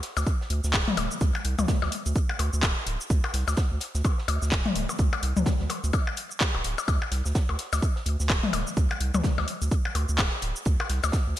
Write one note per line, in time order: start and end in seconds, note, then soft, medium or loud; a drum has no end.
0.03 snare medium
0.03 closed hi-hat medium
0.03 open hi-hat medium
0.17 0.24 D2 loud
0.17 snare soft
0.17 open hi-hat soft
0.17 percussion blips medium
0.17 shaker medium
0.27 kick loud
0.27 closed hi-hat medium
0.27 shaker soft
0.41 snare soft
0.50 0.61 D2 loud
0.50 closed hi-hat medium
0.50 open hi-hat medium
0.64 0.75 D2 medium
0.64 snare soft
0.64 shaker medium
0.74 0.84 D1 medium
0.74 kick loud
0.74 snare loud
0.74 clap loud
0.74 closed hi-hat medium
0.74 percussion blips soft
0.74 shaker soft
0.88 snare soft
0.88 mid tom loud
0.97 1.08 D1 loud
0.97 closed hi-hat medium
0.97 open hi-hat medium
0.97 percussion blips medium
1.11 shaker medium
1.21 1.32 D2 loud
1.21 kick loud
1.21 closed hi-hat medium
1.21 shaker soft
1.35 closed hi-hat soft
1.35 percussion blips medium
1.45 1.55 C2 loud
1.45 closed hi-hat medium
1.45 open hi-hat medium
1.59 1.66 D2 medium
1.59 mid tom medium
1.59 percussion blips soft
1.59 shaker medium
1.68 kick loud
1.68 snare loud
1.68 closed hi-hat medium
1.68 shaker soft
1.82 1.90 D2 medium
1.82 snare medium
1.82 percussion blips medium
1.92 closed hi-hat medium
1.92 open hi-hat loud
2.06 2.13 D2 loud
2.06 open hi-hat soft
2.06 shaker medium
2.15 kick loud
2.15 closed hi-hat medium
2.15 shaker soft
2.29 percussion blips medium
2.39 2.50 D2 loud
2.39 closed hi-hat medium
2.39 open hi-hat medium
2.39 percussion blips soft
2.53 2.64 D2 medium
2.53 shaker medium
2.62 2.73 D1 medium
2.62 kick loud
2.62 snare loud
2.62 clap loud
2.62 closed hi-hat medium
2.62 percussion blips medium
2.62 shaker soft
2.86 2.97 D1 loud
2.86 closed hi-hat medium
2.86 open hi-hat medium
3.01 shaker medium
3.10 3.21 D2 loud
3.10 kick loud
3.10 closed hi-hat medium
3.10 shaker soft
3.24 percussion blips medium
3.24 percussion blips soft
3.34 3.44 C2 loud
3.34 snare soft
3.34 closed hi-hat medium
3.34 open hi-hat loud
3.47 3.55 D2 medium
3.47 snare soft
3.47 percussion blips medium
3.47 shaker medium
3.57 kick loud
3.57 snare loud
3.57 closed hi-hat medium
3.57 shaker soft
3.71 3.79 D2 medium
3.80 snare soft
3.80 closed hi-hat medium
3.80 open hi-hat loud
3.95 4.02 D2 loud
3.95 snare soft
3.95 open hi-hat soft
3.95 shaker soft
4.04 kick loud
4.04 closed hi-hat medium
4.04 percussion blips soft
4.04 shaker soft
4.18 snare soft
4.28 4.39 D2 loud
4.28 closed hi-hat medium
4.28 open hi-hat medium
4.28 percussion blips medium
4.42 4.53 D2 loud
4.42 snare soft
4.42 shaker medium
4.52 4.62 D1 medium
4.52 kick loud
4.52 snare loud
4.52 clap loud
4.52 closed hi-hat medium
4.52 shaker soft
4.66 snare soft
4.66 mid tom loud
4.75 4.86 D1 loud
4.75 closed hi-hat medium
4.75 open hi-hat loud
4.89 percussion blips soft
4.89 shaker medium
4.99 5.10 D2 loud
4.99 kick loud
4.99 closed hi-hat medium
4.99 shaker soft
5.13 closed hi-hat soft
5.13 percussion blips medium
5.23 5.33 C2 loud
5.23 closed hi-hat medium
5.23 open hi-hat medium
5.37 5.44 D2 medium
5.37 mid tom medium
5.37 shaker soft
5.46 kick loud
5.46 snare loud
5.46 closed hi-hat medium
5.46 shaker soft
5.60 5.67 D2 medium
5.60 snare medium
5.69 closed hi-hat medium
5.69 open hi-hat loud
5.69 percussion blips soft
5.84 5.91 D2 loud
5.84 open hi-hat soft
5.84 shaker soft
5.93 kick loud
5.93 closed hi-hat medium
5.93 percussion blips medium
5.93 shaker soft
6.07 percussion blips medium
6.17 closed hi-hat medium
6.17 open hi-hat medium
6.31 shaker soft
6.40 kick loud
6.40 snare loud
6.40 clap loud
6.40 closed hi-hat loud
6.40 shaker soft
6.55 6.62 D1 loud
6.55 percussion blips soft
6.64 6.75 D1 medium
6.64 closed hi-hat medium
6.64 open hi-hat medium
6.78 percussion blips medium
6.78 shaker medium
6.88 6.99 D2 loud
6.88 kick loud
6.88 closed hi-hat medium
6.88 percussion blips medium
6.88 shaker soft
7.02 percussion blips medium
7.11 7.22 C2 medium
7.11 snare medium
7.11 closed hi-hat medium
7.11 open hi-hat medium
7.25 7.33 D2 medium
7.25 snare soft
7.25 shaker medium
7.35 kick loud
7.35 snare loud
7.35 closed hi-hat medium
7.35 shaker soft
7.49 7.56 D2 medium
7.49 percussion blips soft
7.59 snare soft
7.59 closed hi-hat medium
7.59 open hi-hat medium
7.73 7.80 D2 loud
7.73 snare soft
7.73 open hi-hat soft
7.73 percussion blips medium
7.73 shaker soft
7.82 kick loud
7.82 closed hi-hat medium
7.82 shaker soft
7.96 snare soft
8.06 8.17 D2 loud
8.06 closed hi-hat medium
8.06 open hi-hat medium
8.20 8.31 D2 loud
8.20 snare soft
8.20 shaker medium
8.29 8.40 D1 medium
8.29 kick loud
8.29 snare loud
8.29 clap loud
8.29 closed hi-hat medium
8.29 percussion blips soft
8.29 shaker soft
8.43 snare soft
8.43 mid tom medium
8.53 8.64 D1 loud
8.53 closed hi-hat medium
8.53 open hi-hat medium
8.53 percussion blips medium
8.67 shaker medium
8.77 8.87 D2 loud
8.77 kick loud
8.77 closed hi-hat loud
8.77 shaker soft
8.91 closed hi-hat soft
8.91 percussion blips medium
9.00 9.11 C2 loud
9.00 closed hi-hat medium
9.00 open hi-hat medium
9.14 9.22 D2 medium
9.14 mid tom medium
9.14 percussion blips soft
9.14 shaker medium
9.24 kick loud
9.24 snare loud
9.24 closed hi-hat medium
9.24 shaker soft
9.38 9.45 D2 medium
9.38 snare medium
9.38 percussion blips medium
9.48 closed hi-hat medium
9.48 open hi-hat medium
9.62 9.69 D2 loud
9.62 open hi-hat soft
9.62 shaker medium
9.71 kick loud
9.71 closed hi-hat medium
9.71 shaker soft
9.85 percussion blips medium
9.95 10.06 D2 loud
9.95 closed hi-hat medium
9.95 open hi-hat medium
9.95 percussion blips soft
10.09 10.20 D2 medium
10.09 shaker medium
10.18 10.29 D1 medium
10.18 kick loud
10.18 snare loud
10.18 clap loud
10.18 closed hi-hat medium
10.18 percussion blips medium
10.18 shaker soft
10.42 10.53 D1 loud
10.42 closed hi-hat medium
10.42 open hi-hat medium
10.56 shaker medium
10.65 10.76 D2 loud
10.65 kick loud
10.65 closed hi-hat medium
10.65 shaker soft
10.80 percussion blips medium
10.80 percussion blips soft
10.89 11.00 C2 loud
10.89 snare soft
10.89 closed hi-hat medium
10.89 open hi-hat medium
11.03 11.11 D2 medium
11.03 snare soft
11.03 percussion blips medium
11.03 shaker medium
11.12 kick loud
11.12 snare loud
11.12 closed hi-hat medium
11.12 shaker soft
11.27 11.35 D2 medium
11.36 closed hi-hat medium